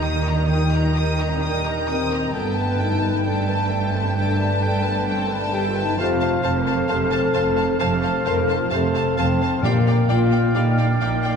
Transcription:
Already playing: double bass section D#2, trombone section A#2 G3, cello section D#3, french horn section D#4, clarinet A#4, oboe G5, flute A#5
0.03 viola section A#4, violin section G5 D#6
0.24 french horn section D4, viola section D#5, violin section A#5
0.48 trombone section A#2 G3, french horn section D#4, viola section A#4, clarinet A#4, oboe G5, violin section G5 D#6, flute A#5
0.72 viola section D#5, violin section A#5
0.94 trombone section A#2 G3, french horn section D#4, clarinet A#4, viola section A#4, oboe G5, violin section G5 D#6, flute A#5
1.19 viola section D#5, violin section A#5
1.29 french horn section C4
1.41 french horn section D4, viola section A#4, violin section G5 D#6
1.64 french horn section D#4, viola section D#5, violin section A#5
1.88 french horn section C4, viola section A#4, violin section G5 D#6
2.12 viola section D#5, violin section A#5
2.33 double bass section G1, cello section G2, trombone section B2 A3, french horn section B3, viola section A4, clarinet B4, violin section G5 A5, oboe G5, flute A5
2.56 viola section B4, violin section G5 A5
2.79 french horn section D#4, viola section A4, violin section G5 A5
3.01 viola section B4, violin section G5 A5
3.23 trombone section B2 A3, viola section A4, clarinet B4, violin section G5 A5, oboe G5
3.27 french horn section D4, flute A5
3.46 viola section B4, violin section G5 A5
3.68 viola section A4, violin section G5 A5
3.92 french horn section C4, viola section B4, violin section G5 A5
4.16 trombone section B2 A3, french horn section D4, viola section A4, clarinet B4, oboe G5, violin section G5 A5, flute A5
4.37 viola section B4, violin section G5 A5
4.61 trombone section B2 A3, french horn section D4, viola section A4, clarinet B4, violin section G5 A5, oboe G5, flute A5
4.84 viola section B4, violin section G5 A5
4.97 french horn section B3
5.07 french horn section C4, viola section A4, violin section G5 A5
5.29 french horn section D4, viola section B4, violin section G5 A5
5.52 trombone section B2 A3, french horn section G4, viola section A4, clarinet B4, oboe G5, violin section G5 A5, flute A5
5.67 french horn section F4
5.75 viola section B4, violin section G5 A5
5.83 french horn section D#4
5.98 double bass section F1, cello section F2, trombone section C3 A3, french horn section F4, viola section C5, clarinet C5, violin section F5 A5, oboe F5, flute A5
6.21 viola section C5, violin section F5 A5
6.43 double bass section F1, cello section F2, viola section C5, french horn section C5, clarinet C5, violin section F5 A5, oboe F5, flute A5
6.59 french horn section A#4
6.66 viola section C5, violin section F5 A5
6.75 french horn section A4
6.88 double bass section F1, cello section F2, trombone section C3 A3, viola section C5, violin section F5 A5
7.11 viola section C5, violin section F5 A5
7.34 double bass section F1, cello section F2, viola section C5, violin section F5 A5
7.56 viola section C5, violin section F5 A5
7.78 double bass section F1, cello section F2, trombone section C3 A3, french horn section A4, viola section C5, clarinet C5, violin section F5 A5, oboe F5, flute A5
8.02 viola section C5, violin section F5 A5
8.25 double bass section F1, cello section F2, french horn section A#4, viola section C5, violin section F5 A5
8.43 french horn section A4
8.49 viola section C5, violin section F5 A5
8.58 french horn section F4
8.70 double bass section F1, cello section F2, trombone section C3 A3, french horn section A4, clarinet C5, viola section C5, oboe F5, violin section F5 A5, flute A5
8.95 viola section C5, violin section F5 A5
9.15 double bass section F1, cello section F2, french horn section C4, viola section C5, clarinet C5, oboe F5, violin section F5 A5, flute A5
9.41 viola section C5, violin section F5 A5
9.62 double bass section A#1, timpani A#2, cello section A#2, trombone section D3 G3, french horn section A#3, clarinet D5, viola section D5, oboe F5, violin section F5 G5, flute G5
9.86 viola section D5, violin section F5 G5
10.08 double bass section A#1, cello section A#2, french horn section F4, clarinet D5, viola section D5, violin section F5 G5, oboe F5, flute G5
10.31 viola section D5, violin section F5 G5
10.54 double bass section A#1, cello section A#2, trombone section D3 G3, french horn section D#4, viola section D5, violin section F5 G5
10.77 viola section D5, violin section F5 G5
10.90 french horn section D4
10.99 double bass section A#1, cello section A#2, french horn section D#4, viola section D5, violin section F5 G5
11.24 viola section D5, violin section F5 G5

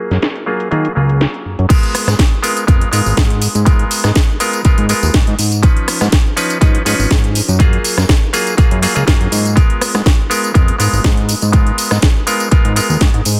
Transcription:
Already playing: clav F#3 A#3 F4 G#4
0.11 analog synth bass F#2, snare, closed hi-hat
0.22 snare, closed hi-hat
0.36 closed hi-hat
0.46 clav F#3 A#3 F4 G#4
0.60 closed hi-hat
0.71 analog synth bass D#3, clav F#3 A#3 F4 G#4, closed hi-hat
0.85 closed hi-hat
0.95 analog synth bass C#2, clav F#3 A#3 F4 G#4
1.09 closed hi-hat
1.21 snare, closed hi-hat
1.34 closed hi-hat
1.46 analog synth bass F#2
1.59 analog synth bass F#2, closed hi-hat
1.69 clav G#3 B3 F4 A#4, kick, closed hi-hat, crash, tambourine
1.83 closed hi-hat
1.95 cross-stick, open hi-hat, tambourine
2.07 analog synth bass G#2, cross-stick, snare, tambourine
2.19 kick, snare, closed hi-hat
2.42 clav G#3 B3 F4 A#4, open hi-hat, tambourine
2.57 closed hi-hat, tambourine
2.67 analog synth bass F2, clav G#3 B3 F4 A#4, kick, closed hi-hat, tambourine
2.81 closed hi-hat
2.91 analog synth bass G#2, clav G#3 B3 F4 A#4, open hi-hat, tambourine
3.06 analog synth bass G#1, tambourine
3.17 analog synth bass G#2, kick, snare, closed hi-hat, tambourine
3.30 closed hi-hat
3.42 open hi-hat, tambourine
3.55 analog synth bass G#2, closed hi-hat, tambourine
3.65 clav G#3 B3 F4 A#4, kick, closed hi-hat, tambourine
3.79 closed hi-hat
3.91 open hi-hat, tambourine
4.04 analog synth bass G#2, cross-stick, snare, closed hi-hat, tambourine
4.15 kick, snare, closed hi-hat, tambourine
4.40 clav G#3 B3 F4 A#4, open hi-hat, tambourine
4.53 closed hi-hat, tambourine
4.65 clav G#3 B3 F4 A#4, kick, closed hi-hat, tambourine
4.78 analog synth bass G#2, closed hi-hat
4.89 clav G#3 B3 F4 A#4, open hi-hat, tambourine
5.03 analog synth bass D#2, tambourine
5.14 analog synth bass G#2, kick, snare, closed hi-hat
5.27 analog synth bass G#2, closed hi-hat
5.39 analog synth bass G#2, open hi-hat, tambourine
5.52 closed hi-hat, tambourine
5.63 clav F3 C#4 D#4 B4, kick, closed hi-hat, tambourine
5.77 closed hi-hat
5.88 cross-stick, open hi-hat, tambourine
6.01 analog synth bass G#2, cross-stick, snare, closed hi-hat, tambourine
6.12 kick, snare, closed hi-hat, tambourine
6.37 clav F3 C#4 D#4 B4, open hi-hat, tambourine
6.50 closed hi-hat, tambourine
6.61 analog synth bass G#2, clav F3 C#4 D#4 B4, kick, closed hi-hat, tambourine
6.75 closed hi-hat
6.85 analog synth bass G#2, clav F3 C#4 D#4 B4, open hi-hat, tambourine
6.99 analog synth bass G#1, tambourine
7.11 analog synth bass G#2, kick, snare, closed hi-hat, tambourine
7.24 closed hi-hat
7.35 open hi-hat, tambourine
7.48 analog synth bass F#2, closed hi-hat, tambourine
7.59 clav F#3 A#3 F4 G#4, kick, closed hi-hat, tambourine
7.73 closed hi-hat
7.84 open hi-hat, tambourine
7.98 analog synth bass F#2, cross-stick, snare, closed hi-hat, tambourine
8.09 kick, snare, closed hi-hat
8.33 clav F#3 A#3 F4 G#4, open hi-hat, tambourine
8.47 closed hi-hat, tambourine
8.57 clav F#3 A#3 F4 G#4, kick, closed hi-hat, tambourine
8.71 analog synth bass F#2, closed hi-hat
8.82 clav F#3 A#3 F4 G#4, open hi-hat, tambourine
8.95 analog synth bass C#2, clav F#3 A#3 F4 G#4, closed hi-hat, tambourine
9.07 analog synth bass F#2, clav F#3 A#3 F4 G#4, kick, snare, closed hi-hat
9.20 analog synth bass F#2, closed hi-hat
9.32 analog synth bass G#2, open hi-hat, tambourine
9.45 closed hi-hat, tambourine
9.56 clav G#3 B3 F4 A#4, kick, closed hi-hat, tambourine
9.70 closed hi-hat
9.81 cross-stick, open hi-hat, tambourine
9.95 analog synth bass G#2, cross-stick, snare, tambourine
10.06 kick, snare, closed hi-hat, tambourine
10.30 clav G#3 B3 F4 A#4, open hi-hat, tambourine
10.44 closed hi-hat, tambourine
10.54 analog synth bass F2, clav G#3 B3 F4 A#4, kick, closed hi-hat, tambourine
10.68 closed hi-hat
10.78 analog synth bass G#2, clav G#3 B3 F4 A#4, open hi-hat, tambourine
10.93 analog synth bass G#1, tambourine
11.04 analog synth bass G#2, kick, snare, closed hi-hat
11.17 closed hi-hat
11.29 open hi-hat, tambourine
11.42 analog synth bass G#2, closed hi-hat, tambourine
11.52 clav G#3 B3 F4 A#4, kick, closed hi-hat
11.67 closed hi-hat
11.78 open hi-hat, tambourine
11.91 analog synth bass G#2, cross-stick, snare, closed hi-hat, tambourine
12.02 kick, snare, closed hi-hat
12.27 clav G#3 B3 F4 A#4, open hi-hat, tambourine
12.40 closed hi-hat, tambourine
12.51 clav G#3 B3 F4 A#4, kick, closed hi-hat, tambourine
12.65 analog synth bass G#2, closed hi-hat
12.76 clav G#3 B3 F4 A#4, open hi-hat, tambourine
12.90 analog synth bass D#2, tambourine
13.01 analog synth bass G#2, kick, snare, closed hi-hat, tambourine
13.14 analog synth bass G#2, closed hi-hat
13.25 analog synth bass G#2, open hi-hat, tambourine

